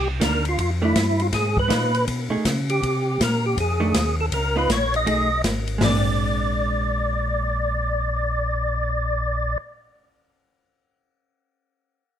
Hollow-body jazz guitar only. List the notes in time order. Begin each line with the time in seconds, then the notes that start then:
0.20 D#3 A#3 D4
0.82 D#3 A3 D4
1.68 B3 D#4 F4
2.30 A3 D#4 G#4
3.80 D#3 A3 D4
4.56 B3 D#4 F4
5.06 A3 D#4 G#4
5.78 G#3
5.85 C4
5.90 D4